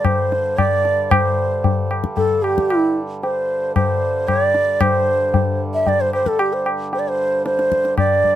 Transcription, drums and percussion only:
0, 0, Header, 1, 2, 480
1, 0, Start_track
1, 0, Tempo, 528634
1, 1012, Time_signature, 7, 2, 24, 8
1, 7586, End_track
2, 0, Start_track
2, 0, Title_t, "Tabla"
2, 41, Note_on_c, 9, 60, 73
2, 41, Note_on_c, 9, 64, 61
2, 132, Note_off_c, 9, 60, 0
2, 132, Note_off_c, 9, 64, 0
2, 292, Note_on_c, 9, 62, 50
2, 383, Note_off_c, 9, 62, 0
2, 530, Note_on_c, 9, 60, 64
2, 530, Note_on_c, 9, 64, 55
2, 621, Note_off_c, 9, 60, 0
2, 621, Note_off_c, 9, 64, 0
2, 772, Note_on_c, 9, 62, 53
2, 863, Note_off_c, 9, 62, 0
2, 1011, Note_on_c, 9, 60, 94
2, 1011, Note_on_c, 9, 64, 84
2, 1102, Note_off_c, 9, 60, 0
2, 1102, Note_off_c, 9, 64, 0
2, 1492, Note_on_c, 9, 63, 72
2, 1492, Note_on_c, 9, 64, 68
2, 1582, Note_off_c, 9, 63, 0
2, 1582, Note_off_c, 9, 64, 0
2, 1732, Note_on_c, 9, 60, 54
2, 1823, Note_off_c, 9, 60, 0
2, 1850, Note_on_c, 9, 37, 55
2, 1941, Note_off_c, 9, 37, 0
2, 1970, Note_on_c, 9, 63, 72
2, 1970, Note_on_c, 9, 64, 61
2, 2061, Note_off_c, 9, 63, 0
2, 2061, Note_off_c, 9, 64, 0
2, 2217, Note_on_c, 9, 60, 53
2, 2308, Note_off_c, 9, 60, 0
2, 2341, Note_on_c, 9, 37, 55
2, 2432, Note_off_c, 9, 37, 0
2, 2455, Note_on_c, 9, 60, 68
2, 2546, Note_off_c, 9, 60, 0
2, 2937, Note_on_c, 9, 63, 68
2, 3028, Note_off_c, 9, 63, 0
2, 3413, Note_on_c, 9, 60, 69
2, 3413, Note_on_c, 9, 64, 60
2, 3504, Note_off_c, 9, 60, 0
2, 3504, Note_off_c, 9, 64, 0
2, 3890, Note_on_c, 9, 60, 64
2, 3890, Note_on_c, 9, 64, 57
2, 3981, Note_off_c, 9, 60, 0
2, 3981, Note_off_c, 9, 64, 0
2, 4127, Note_on_c, 9, 62, 56
2, 4218, Note_off_c, 9, 62, 0
2, 4364, Note_on_c, 9, 60, 93
2, 4364, Note_on_c, 9, 64, 86
2, 4455, Note_off_c, 9, 60, 0
2, 4455, Note_off_c, 9, 64, 0
2, 4848, Note_on_c, 9, 63, 70
2, 4848, Note_on_c, 9, 64, 64
2, 4939, Note_off_c, 9, 63, 0
2, 4939, Note_off_c, 9, 64, 0
2, 5326, Note_on_c, 9, 63, 68
2, 5326, Note_on_c, 9, 64, 61
2, 5416, Note_off_c, 9, 63, 0
2, 5416, Note_off_c, 9, 64, 0
2, 5569, Note_on_c, 9, 60, 53
2, 5660, Note_off_c, 9, 60, 0
2, 5686, Note_on_c, 9, 37, 53
2, 5777, Note_off_c, 9, 37, 0
2, 5805, Note_on_c, 9, 60, 68
2, 5895, Note_off_c, 9, 60, 0
2, 6048, Note_on_c, 9, 60, 52
2, 6139, Note_off_c, 9, 60, 0
2, 6292, Note_on_c, 9, 63, 70
2, 6383, Note_off_c, 9, 63, 0
2, 6771, Note_on_c, 9, 62, 70
2, 6862, Note_off_c, 9, 62, 0
2, 6891, Note_on_c, 9, 62, 52
2, 6982, Note_off_c, 9, 62, 0
2, 7007, Note_on_c, 9, 37, 54
2, 7098, Note_off_c, 9, 37, 0
2, 7127, Note_on_c, 9, 62, 53
2, 7217, Note_off_c, 9, 62, 0
2, 7242, Note_on_c, 9, 60, 66
2, 7242, Note_on_c, 9, 64, 55
2, 7333, Note_off_c, 9, 60, 0
2, 7333, Note_off_c, 9, 64, 0
2, 7484, Note_on_c, 9, 64, 48
2, 7574, Note_off_c, 9, 64, 0
2, 7586, End_track
0, 0, End_of_file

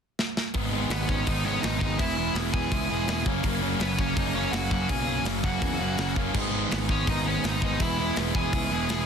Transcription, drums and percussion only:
0, 0, Header, 1, 2, 480
1, 0, Start_track
1, 0, Key_signature, 5, "minor"
1, 0, Tempo, 362757
1, 725, Time_signature, 4, 2, 24, 8
1, 11987, End_track
2, 0, Start_track
2, 0, Title_t, "Drums"
2, 251, Note_on_c, 9, 38, 68
2, 383, Note_off_c, 9, 38, 0
2, 492, Note_on_c, 9, 38, 83
2, 624, Note_off_c, 9, 38, 0
2, 713, Note_on_c, 9, 46, 59
2, 722, Note_on_c, 9, 36, 126
2, 845, Note_off_c, 9, 46, 0
2, 854, Note_off_c, 9, 36, 0
2, 1195, Note_on_c, 9, 46, 60
2, 1208, Note_on_c, 9, 38, 104
2, 1327, Note_off_c, 9, 46, 0
2, 1341, Note_off_c, 9, 38, 0
2, 1440, Note_on_c, 9, 36, 86
2, 1573, Note_off_c, 9, 36, 0
2, 1677, Note_on_c, 9, 46, 69
2, 1682, Note_on_c, 9, 36, 117
2, 1809, Note_off_c, 9, 46, 0
2, 1814, Note_off_c, 9, 36, 0
2, 2159, Note_on_c, 9, 46, 59
2, 2172, Note_on_c, 9, 38, 113
2, 2291, Note_off_c, 9, 46, 0
2, 2304, Note_off_c, 9, 38, 0
2, 2398, Note_on_c, 9, 36, 87
2, 2531, Note_off_c, 9, 36, 0
2, 2634, Note_on_c, 9, 46, 64
2, 2638, Note_on_c, 9, 36, 114
2, 2767, Note_off_c, 9, 46, 0
2, 2770, Note_off_c, 9, 36, 0
2, 3113, Note_on_c, 9, 46, 57
2, 3127, Note_on_c, 9, 38, 99
2, 3246, Note_off_c, 9, 46, 0
2, 3259, Note_off_c, 9, 38, 0
2, 3356, Note_on_c, 9, 36, 93
2, 3488, Note_off_c, 9, 36, 0
2, 3593, Note_on_c, 9, 46, 62
2, 3595, Note_on_c, 9, 36, 111
2, 3725, Note_off_c, 9, 46, 0
2, 3728, Note_off_c, 9, 36, 0
2, 4074, Note_on_c, 9, 46, 55
2, 4087, Note_on_c, 9, 38, 112
2, 4206, Note_off_c, 9, 46, 0
2, 4219, Note_off_c, 9, 38, 0
2, 4313, Note_on_c, 9, 36, 90
2, 4445, Note_off_c, 9, 36, 0
2, 4545, Note_on_c, 9, 46, 66
2, 4550, Note_on_c, 9, 36, 112
2, 4677, Note_off_c, 9, 46, 0
2, 4683, Note_off_c, 9, 36, 0
2, 5029, Note_on_c, 9, 46, 59
2, 5042, Note_on_c, 9, 38, 105
2, 5161, Note_off_c, 9, 46, 0
2, 5174, Note_off_c, 9, 38, 0
2, 5274, Note_on_c, 9, 36, 94
2, 5406, Note_off_c, 9, 36, 0
2, 5514, Note_on_c, 9, 36, 115
2, 5520, Note_on_c, 9, 46, 67
2, 5647, Note_off_c, 9, 36, 0
2, 5652, Note_off_c, 9, 46, 0
2, 5995, Note_on_c, 9, 46, 64
2, 6008, Note_on_c, 9, 38, 109
2, 6127, Note_off_c, 9, 46, 0
2, 6141, Note_off_c, 9, 38, 0
2, 6235, Note_on_c, 9, 36, 80
2, 6367, Note_off_c, 9, 36, 0
2, 6475, Note_on_c, 9, 36, 122
2, 6477, Note_on_c, 9, 46, 68
2, 6608, Note_off_c, 9, 36, 0
2, 6610, Note_off_c, 9, 46, 0
2, 6952, Note_on_c, 9, 46, 61
2, 6965, Note_on_c, 9, 38, 111
2, 7084, Note_off_c, 9, 46, 0
2, 7097, Note_off_c, 9, 38, 0
2, 7195, Note_on_c, 9, 36, 91
2, 7327, Note_off_c, 9, 36, 0
2, 7435, Note_on_c, 9, 36, 124
2, 7436, Note_on_c, 9, 46, 60
2, 7567, Note_off_c, 9, 36, 0
2, 7568, Note_off_c, 9, 46, 0
2, 7910, Note_on_c, 9, 46, 55
2, 7923, Note_on_c, 9, 38, 110
2, 8042, Note_off_c, 9, 46, 0
2, 8055, Note_off_c, 9, 38, 0
2, 8154, Note_on_c, 9, 36, 90
2, 8287, Note_off_c, 9, 36, 0
2, 8396, Note_on_c, 9, 36, 117
2, 8396, Note_on_c, 9, 49, 106
2, 8528, Note_off_c, 9, 49, 0
2, 8529, Note_off_c, 9, 36, 0
2, 8883, Note_on_c, 9, 46, 57
2, 8897, Note_on_c, 9, 38, 102
2, 9016, Note_off_c, 9, 46, 0
2, 9029, Note_off_c, 9, 38, 0
2, 9118, Note_on_c, 9, 36, 88
2, 9250, Note_off_c, 9, 36, 0
2, 9360, Note_on_c, 9, 36, 115
2, 9364, Note_on_c, 9, 46, 66
2, 9492, Note_off_c, 9, 36, 0
2, 9496, Note_off_c, 9, 46, 0
2, 9846, Note_on_c, 9, 46, 64
2, 9859, Note_on_c, 9, 38, 102
2, 9978, Note_off_c, 9, 46, 0
2, 9991, Note_off_c, 9, 38, 0
2, 10082, Note_on_c, 9, 36, 89
2, 10214, Note_off_c, 9, 36, 0
2, 10318, Note_on_c, 9, 46, 68
2, 10323, Note_on_c, 9, 36, 122
2, 10450, Note_off_c, 9, 46, 0
2, 10455, Note_off_c, 9, 36, 0
2, 10799, Note_on_c, 9, 46, 62
2, 10813, Note_on_c, 9, 38, 104
2, 10932, Note_off_c, 9, 46, 0
2, 10945, Note_off_c, 9, 38, 0
2, 11046, Note_on_c, 9, 36, 89
2, 11178, Note_off_c, 9, 36, 0
2, 11286, Note_on_c, 9, 46, 65
2, 11287, Note_on_c, 9, 36, 118
2, 11418, Note_off_c, 9, 46, 0
2, 11419, Note_off_c, 9, 36, 0
2, 11764, Note_on_c, 9, 46, 58
2, 11777, Note_on_c, 9, 38, 118
2, 11896, Note_off_c, 9, 46, 0
2, 11909, Note_off_c, 9, 38, 0
2, 11987, End_track
0, 0, End_of_file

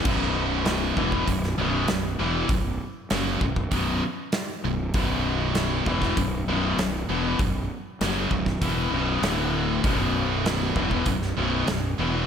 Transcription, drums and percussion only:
0, 0, Header, 1, 2, 480
1, 0, Start_track
1, 0, Key_signature, 2, "minor"
1, 0, Tempo, 612245
1, 45, Time_signature, 4, 2, 24, 8
1, 9617, End_track
2, 0, Start_track
2, 0, Title_t, "Drums"
2, 39, Note_on_c, 9, 49, 96
2, 41, Note_on_c, 9, 36, 112
2, 117, Note_off_c, 9, 49, 0
2, 120, Note_off_c, 9, 36, 0
2, 514, Note_on_c, 9, 46, 47
2, 518, Note_on_c, 9, 38, 106
2, 593, Note_off_c, 9, 46, 0
2, 597, Note_off_c, 9, 38, 0
2, 759, Note_on_c, 9, 36, 86
2, 838, Note_off_c, 9, 36, 0
2, 879, Note_on_c, 9, 36, 77
2, 958, Note_off_c, 9, 36, 0
2, 1000, Note_on_c, 9, 36, 92
2, 1002, Note_on_c, 9, 46, 55
2, 1078, Note_off_c, 9, 36, 0
2, 1080, Note_off_c, 9, 46, 0
2, 1124, Note_on_c, 9, 38, 30
2, 1202, Note_off_c, 9, 38, 0
2, 1473, Note_on_c, 9, 46, 51
2, 1477, Note_on_c, 9, 38, 107
2, 1552, Note_off_c, 9, 46, 0
2, 1556, Note_off_c, 9, 38, 0
2, 1953, Note_on_c, 9, 46, 51
2, 1954, Note_on_c, 9, 36, 115
2, 2032, Note_off_c, 9, 36, 0
2, 2032, Note_off_c, 9, 46, 0
2, 2432, Note_on_c, 9, 46, 59
2, 2436, Note_on_c, 9, 38, 98
2, 2511, Note_off_c, 9, 46, 0
2, 2515, Note_off_c, 9, 38, 0
2, 2674, Note_on_c, 9, 36, 91
2, 2753, Note_off_c, 9, 36, 0
2, 2794, Note_on_c, 9, 36, 78
2, 2872, Note_off_c, 9, 36, 0
2, 2913, Note_on_c, 9, 46, 58
2, 2914, Note_on_c, 9, 36, 96
2, 2991, Note_off_c, 9, 46, 0
2, 2992, Note_off_c, 9, 36, 0
2, 3389, Note_on_c, 9, 46, 52
2, 3393, Note_on_c, 9, 38, 106
2, 3467, Note_off_c, 9, 46, 0
2, 3471, Note_off_c, 9, 38, 0
2, 3871, Note_on_c, 9, 46, 55
2, 3875, Note_on_c, 9, 36, 104
2, 3949, Note_off_c, 9, 46, 0
2, 3954, Note_off_c, 9, 36, 0
2, 4351, Note_on_c, 9, 46, 53
2, 4355, Note_on_c, 9, 38, 101
2, 4430, Note_off_c, 9, 46, 0
2, 4433, Note_off_c, 9, 38, 0
2, 4597, Note_on_c, 9, 36, 93
2, 4675, Note_off_c, 9, 36, 0
2, 4717, Note_on_c, 9, 36, 78
2, 4720, Note_on_c, 9, 38, 29
2, 4796, Note_off_c, 9, 36, 0
2, 4799, Note_off_c, 9, 38, 0
2, 4838, Note_on_c, 9, 36, 102
2, 4838, Note_on_c, 9, 46, 51
2, 4917, Note_off_c, 9, 36, 0
2, 4917, Note_off_c, 9, 46, 0
2, 5321, Note_on_c, 9, 46, 53
2, 5324, Note_on_c, 9, 38, 104
2, 5399, Note_off_c, 9, 46, 0
2, 5403, Note_off_c, 9, 38, 0
2, 5796, Note_on_c, 9, 46, 53
2, 5797, Note_on_c, 9, 36, 108
2, 5874, Note_off_c, 9, 46, 0
2, 5875, Note_off_c, 9, 36, 0
2, 6279, Note_on_c, 9, 46, 60
2, 6283, Note_on_c, 9, 38, 93
2, 6358, Note_off_c, 9, 46, 0
2, 6362, Note_off_c, 9, 38, 0
2, 6514, Note_on_c, 9, 36, 88
2, 6593, Note_off_c, 9, 36, 0
2, 6635, Note_on_c, 9, 36, 74
2, 6640, Note_on_c, 9, 38, 27
2, 6713, Note_off_c, 9, 36, 0
2, 6718, Note_off_c, 9, 38, 0
2, 6756, Note_on_c, 9, 36, 99
2, 6758, Note_on_c, 9, 46, 55
2, 6834, Note_off_c, 9, 36, 0
2, 6836, Note_off_c, 9, 46, 0
2, 7238, Note_on_c, 9, 46, 58
2, 7242, Note_on_c, 9, 38, 103
2, 7316, Note_off_c, 9, 46, 0
2, 7320, Note_off_c, 9, 38, 0
2, 7715, Note_on_c, 9, 36, 111
2, 7717, Note_on_c, 9, 46, 52
2, 7793, Note_off_c, 9, 36, 0
2, 7796, Note_off_c, 9, 46, 0
2, 8199, Note_on_c, 9, 46, 47
2, 8203, Note_on_c, 9, 38, 102
2, 8277, Note_off_c, 9, 46, 0
2, 8281, Note_off_c, 9, 38, 0
2, 8435, Note_on_c, 9, 36, 90
2, 8513, Note_off_c, 9, 36, 0
2, 8554, Note_on_c, 9, 36, 73
2, 8632, Note_off_c, 9, 36, 0
2, 8669, Note_on_c, 9, 46, 54
2, 8673, Note_on_c, 9, 36, 94
2, 8747, Note_off_c, 9, 46, 0
2, 8751, Note_off_c, 9, 36, 0
2, 8797, Note_on_c, 9, 38, 32
2, 8876, Note_off_c, 9, 38, 0
2, 9154, Note_on_c, 9, 46, 49
2, 9158, Note_on_c, 9, 38, 100
2, 9232, Note_off_c, 9, 46, 0
2, 9236, Note_off_c, 9, 38, 0
2, 9617, End_track
0, 0, End_of_file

